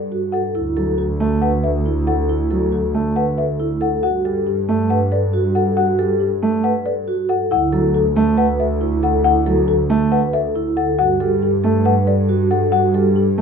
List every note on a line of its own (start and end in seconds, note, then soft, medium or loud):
0.00 0.43 G2 medium
0.00 0.18 A4 soft
0.00 0.18 D5 medium
0.12 0.40 F#4 soft
0.32 0.62 A4 medium
0.32 0.61 F#5 medium
0.55 3.90 D2 medium
0.55 0.83 E4 medium
0.77 1.05 F#3 soft
0.77 1.05 A4 medium
0.98 1.27 A4 soft
1.20 1.49 A3 medium
1.42 1.70 B4 medium
1.42 1.70 F#5 medium
1.64 1.92 A4 soft
1.64 1.92 E5 medium
1.86 2.14 E4 medium
2.07 2.36 A4 medium
2.07 2.36 F#5 medium
2.29 2.57 E4 medium
2.51 2.79 F#3 medium
2.51 2.79 A4 medium
2.72 3.01 A4 soft
2.94 3.23 A3 medium
3.16 3.44 B4 medium
3.16 3.44 F#5 medium
3.38 3.66 A4 medium
3.38 3.66 E5 medium
3.60 3.88 E4 soft
3.81 4.09 A4 medium
3.81 4.02 F#5 medium
4.03 7.38 G2 medium
4.03 4.31 F#4 medium
4.03 4.31 F#5 medium
4.25 4.53 G3 medium
4.25 4.53 A4 medium
4.47 4.75 G4 medium
4.69 4.97 A3 medium
4.90 5.18 B4 medium
4.90 5.18 F#5 medium
5.12 5.40 A4 medium
5.12 5.40 D5 medium
5.33 5.62 F#4 medium
5.55 5.84 A4 medium
5.55 5.76 F#5 medium
5.77 6.05 F#4 medium
5.77 6.05 F#5 medium
5.99 6.27 G3 medium
5.99 6.27 A4 medium
6.20 6.49 G4 soft
6.42 6.71 A3 medium
6.64 6.92 B4 medium
6.64 6.92 F#5 medium
6.86 7.14 A4 medium
6.86 7.14 D5 medium
7.08 7.36 F#4 medium
7.29 7.57 A4 medium
7.29 7.51 F#5 medium
7.51 10.86 D2 medium
7.51 7.79 E4 medium
7.51 7.79 F#5 medium
7.72 8.01 F#3 medium
7.72 8.01 A4 medium
7.95 8.23 A4 medium
8.16 8.44 A3 medium
8.16 8.44 A4 medium
8.37 8.66 B4 medium
8.37 8.66 F#5 medium
8.60 8.88 A4 medium
8.60 8.88 E5 medium
8.81 9.09 E4 medium
9.03 9.31 A4 medium
9.03 9.23 F#5 medium
9.24 9.53 E4 medium
9.24 9.53 F#5 medium
9.46 9.75 F#3 medium
9.46 9.75 A4 medium
9.68 9.96 A4 medium
9.90 10.18 A3 medium
9.90 10.18 A4 medium
10.12 10.40 B4 medium
10.12 10.40 F#5 medium
10.33 10.62 A4 medium
10.33 10.62 E5 medium
10.56 10.84 E4 medium
10.77 11.05 A4 medium
10.77 10.97 F#5 medium
10.99 13.41 G2 medium
10.99 11.27 F#4 medium
10.99 11.27 F#5 medium
11.20 11.49 G3 medium
11.20 11.49 A4 medium
11.42 11.71 G4 medium
11.64 11.92 A3 medium
11.64 11.92 A4 medium
11.85 12.14 B4 medium
11.85 12.14 F#5 medium
12.07 12.36 A4 medium
12.07 12.36 D5 medium
12.29 12.57 F#4 medium
12.51 12.79 A4 medium
12.51 12.71 F#5 medium
12.72 13.01 F#4 medium
12.72 13.01 F#5 medium
12.94 13.23 G3 medium
12.94 13.23 A4 medium
13.16 13.41 G4 medium
13.38 13.41 A3 medium
13.38 13.41 A4 soft